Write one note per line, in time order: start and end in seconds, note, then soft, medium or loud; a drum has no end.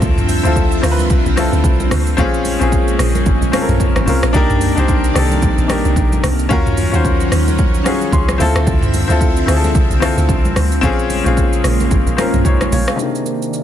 0.00 0.41 D2 loud
0.00 2.16 D3 medium
0.00 2.16 F3 medium
0.00 0.28 C4 medium
0.00 2.16 C4 medium
0.00 0.29 E4 medium
0.00 0.29 F4 medium
0.00 0.30 A4 loud
0.00 2.16 E5 medium
0.00 kick loud
0.00 low conga medium
0.00 shaker medium
0.18 mid tom medium
0.18 shaker medium
0.29 open hi-hat medium
0.29 high conga medium
0.29 shaker medium
0.43 0.79 D2 loud
0.43 0.76 C4 medium
0.43 0.76 E4 medium
0.43 0.77 F4 medium
0.43 0.77 A4 medium
0.43 shaker medium
0.56 kick medium
0.56 shaker medium
0.72 shaker medium
0.82 1.07 D2 loud
0.82 1.27 C4 medium
0.82 1.28 E4 medium
0.82 1.28 F4 medium
0.82 0.92 A#4 medium
0.82 cross-stick medium
0.82 open hi-hat medium
0.82 shaker loud
0.92 1.32 B4 medium
0.99 high conga medium
0.99 shaker medium
1.10 1.24 C2 loud
1.10 kick loud
1.10 shaker medium
1.26 1.50 C2 medium
1.26 shaker medium
1.36 2.03 C4 medium
1.36 2.04 E4 medium
1.36 2.04 F4 medium
1.36 2.05 A4 medium
1.36 cross-stick medium
1.36 open hi-hat medium
1.36 high conga medium
1.36 shaker medium
1.53 1.63 D2 loud
1.53 shaker medium
1.64 1.88 C2 loud
1.64 kick medium
1.64 shaker medium
1.80 high conga medium
1.80 shaker medium
1.91 2.15 D2 loud
1.91 cross-stick medium
1.91 open hi-hat medium
1.91 high conga medium
1.91 low conga medium
1.91 shaker medium
2.07 shaker medium
2.17 2.57 A#1 loud
2.17 4.32 C#3 medium
2.17 4.32 G#3 medium
2.17 6.47 A#3 medium
2.17 2.51 C4 loud
2.17 2.51 C#4 loud
2.17 2.52 F4 loud
2.17 2.53 G#4 loud
2.17 kick loud
2.17 low conga medium
2.17 shaker medium
2.34 shaker medium
2.45 open hi-hat medium
2.45 high conga medium
2.45 shaker loud
2.59 2.96 A#1 medium
2.59 3.35 C4 medium
2.59 3.36 C#4 medium
2.59 3.36 F4 medium
2.59 3.37 G#4 medium
2.59 shaker medium
2.72 kick medium
2.72 shaker medium
2.88 shaker medium
2.99 3.24 A#1 loud
2.99 cross-stick medium
2.99 open hi-hat medium
2.99 shaker loud
3.15 high conga medium
3.15 shaker medium
3.26 3.40 G#1 loud
3.26 kick loud
3.26 low conga medium
3.26 shaker medium
3.42 3.52 A#1 medium
3.42 shaker medium
3.52 3.97 C4 medium
3.52 3.98 C#4 medium
3.52 3.99 F4 medium
3.52 3.62 A4 medium
3.52 cross-stick loud
3.52 open hi-hat medium
3.52 high conga medium
3.52 shaker medium
3.62 4.03 A#4 medium
3.69 3.79 A#1 loud
3.69 mid tom medium
3.69 shaker medium
3.80 kick medium
3.80 shaker medium
3.96 4.06 G#1 loud
3.96 cross-stick medium
3.96 high conga medium
3.96 shaker medium
4.06 4.21 C2 loud
4.06 4.29 C4 medium
4.06 4.30 C#4 medium
4.06 4.30 F4 medium
4.06 4.31 A#4 medium
4.06 open hi-hat medium
4.06 high conga medium
4.06 low conga medium
4.06 shaker medium
4.23 4.33 A#1 medium
4.23 cross-stick loud
4.23 shaker medium
4.33 4.73 C2 loud
4.33 6.48 C3 medium
4.33 6.48 D#3 medium
4.33 4.67 D4 loud
4.33 4.68 D#4 loud
4.33 4.68 G4 loud
4.33 4.69 A#4 loud
4.33 6.48 D5 medium
4.33 kick loud
4.33 low conga medium
4.33 shaker medium
4.50 mid tom medium
4.50 shaker medium
4.61 open hi-hat medium
4.61 high conga medium
4.61 shaker medium
4.76 5.12 C2 loud
4.76 5.08 D4 medium
4.76 5.08 D#4 medium
4.76 5.09 G4 medium
4.76 5.10 C5 medium
4.76 shaker medium
4.88 kick medium
4.88 shaker medium
5.04 shaker medium
5.14 5.40 C2 loud
5.14 5.60 D4 medium
5.14 5.60 D#4 medium
5.14 5.61 G4 medium
5.14 5.62 A4 medium
5.14 cross-stick medium
5.14 open hi-hat medium
5.14 shaker loud
5.31 high conga medium
5.31 shaker medium
5.42 5.57 A#1 medium
5.42 kick loud
5.42 shaker medium
5.58 5.82 A#1 medium
5.58 shaker medium
5.68 6.35 D4 medium
5.68 6.36 D#4 medium
5.68 6.37 G4 medium
5.68 6.37 A#4 medium
5.68 cross-stick loud
5.68 open hi-hat medium
5.68 high conga medium
5.68 shaker medium
5.85 5.95 C2 loud
5.85 shaker medium
5.96 6.21 A#1 loud
5.96 kick medium
5.96 shaker medium
6.12 high conga medium
6.12 shaker medium
6.24 6.48 C2 medium
6.24 cross-stick medium
6.24 open hi-hat medium
6.24 high conga medium
6.24 low conga medium
6.24 shaker medium
6.39 shaker medium
6.49 6.89 D#2 loud
6.49 8.38 D#3 medium
6.49 8.38 F#3 medium
6.49 6.83 C#4 loud
6.49 8.38 C#4 medium
6.49 6.84 F4 loud
6.49 6.84 F#4 loud
6.49 6.85 A#4 loud
6.49 kick loud
6.49 low conga medium
6.49 shaker medium
6.66 mid tom medium
6.66 shaker medium
6.77 open hi-hat medium
6.77 high conga medium
6.77 shaker medium
6.92 7.28 D#2 loud
6.92 7.67 C#4 medium
6.92 7.68 F4 medium
6.92 7.69 F#4 medium
6.92 7.69 C5 medium
6.92 shaker medium
7.05 kick medium
7.05 shaker medium
7.20 shaker medium
7.32 7.82 D#2 loud
7.32 cross-stick medium
7.32 open hi-hat medium
7.32 shaker loud
7.48 high conga medium
7.48 shaker medium
7.58 kick loud
7.58 shaker medium
7.74 shaker medium
7.84 8.30 C#4 medium
7.84 8.31 F4 medium
7.84 8.31 F#4 medium
7.84 8.32 G#4 medium
7.84 cross-stick medium
7.84 open hi-hat medium
7.84 high conga medium
7.84 shaker medium
8.01 shaker medium
8.12 8.37 C#2 loud
8.12 8.63 C6 medium
8.12 kick medium
8.12 shaker medium
8.29 cross-stick medium
8.29 high conga medium
8.29 shaker medium
8.38 8.54 D2 loud
8.38 10.81 D3 medium
8.38 8.93 C4 medium
8.38 10.81 C4 medium
8.38 8.94 E4 medium
8.38 8.94 F4 medium
8.38 8.95 A4 loud
8.38 10.81 E5 medium
8.38 open hi-hat medium
8.38 high conga medium
8.38 low conga medium
8.38 shaker medium
8.55 8.66 D2 medium
8.55 cross-stick loud
8.55 shaker medium
8.67 9.06 D2 loud
8.67 kick loud
8.67 low conga medium
8.67 shaker medium
8.83 mid tom medium
8.83 shaker medium
8.94 open hi-hat medium
8.94 high conga medium
8.94 shaker loud
9.08 9.44 D2 loud
9.08 9.40 C4 medium
9.08 9.41 E4 medium
9.08 9.41 F4 medium
9.08 9.42 A4 loud
9.08 shaker medium
9.21 kick medium
9.21 shaker medium
9.37 shaker medium
9.46 9.72 D2 loud
9.46 9.92 C4 medium
9.46 9.93 E4 medium
9.46 9.93 F4 medium
9.46 9.56 G#4 medium
9.46 cross-stick medium
9.46 open hi-hat medium
9.46 shaker loud
9.56 9.97 A4 medium
9.64 high conga medium
9.64 shaker medium
9.75 9.89 C2 loud
9.75 kick loud
9.75 shaker medium
9.90 10.15 C2 medium
9.90 shaker medium
10.00 10.68 C4 medium
10.00 10.68 E4 medium
10.00 10.69 F4 medium
10.00 10.70 A4 medium
10.00 cross-stick loud
10.00 open hi-hat medium
10.00 high conga medium
10.00 shaker medium
10.17 10.30 D2 loud
10.17 shaker soft
10.29 10.53 C2 loud
10.29 kick loud
10.29 shaker medium
10.45 high conga medium
10.45 shaker medium
10.56 10.80 D2 loud
10.56 cross-stick medium
10.56 open hi-hat medium
10.56 high conga medium
10.56 low conga medium
10.56 shaker medium
10.72 shaker medium
10.81 11.22 A#1 loud
10.81 12.97 C#3 medium
10.81 12.97 G#3 medium
10.81 12.97 A#3 medium
10.81 11.15 C4 loud
10.81 11.16 C#4 loud
10.81 11.17 F4 loud
10.81 11.17 G#4 loud
10.81 kick loud
10.81 low conga medium
10.81 shaker medium
10.99 shaker medium
11.10 open hi-hat medium
11.10 high conga medium
11.10 shaker loud
11.24 11.60 A#1 loud
11.24 12.00 C4 medium
11.24 12.00 C#4 medium
11.24 12.01 F4 medium
11.24 12.02 G#4 medium
11.24 shaker medium
11.37 kick medium
11.37 shaker medium
11.53 shaker medium
11.64 11.88 A#1 loud
11.64 cross-stick medium
11.64 open hi-hat medium
11.64 shaker loud
11.80 high conga medium
11.80 shaker medium
11.91 12.05 G#1 loud
11.91 kick loud
11.91 shaker medium
12.07 12.17 A#1 medium
12.07 shaker medium
12.17 12.62 C4 medium
12.17 12.63 C#4 medium
12.17 12.46 F4 medium
12.17 12.46 A#4 medium
12.17 cross-stick loud
12.17 open hi-hat medium
12.17 high conga medium
12.17 shaker medium
12.34 12.44 A#1 loud
12.34 mid tom medium
12.34 shaker medium
12.45 12.59 C2 loud
12.45 12.71 D#4 medium
12.45 12.71 C5 medium
12.45 12.71 C#5 medium
12.45 kick medium
12.45 shaker medium
12.61 cross-stick medium
12.61 high conga medium
12.61 shaker medium
12.72 12.86 A#1 loud
12.72 12.88 F4 medium
12.72 12.87 C#5 medium
12.72 open hi-hat medium
12.72 high conga medium
12.72 low conga medium
12.72 shaker medium
12.88 13.14 G#4 medium
12.88 13.14 F5 medium
12.88 cross-stick loud
12.88 shaker medium
12.96 13.63 C3 medium
12.96 13.63 D#3 medium
12.96 13.63 A#3 medium
12.96 13.63 D4 medium
12.96 13.63 D#4 medium
12.96 13.63 D5 medium
12.96 shaker medium
13.01 13.63 G4 medium
13.01 13.63 A#4 medium
13.15 shaker soft
13.26 shaker medium
13.42 shaker medium
13.54 shaker medium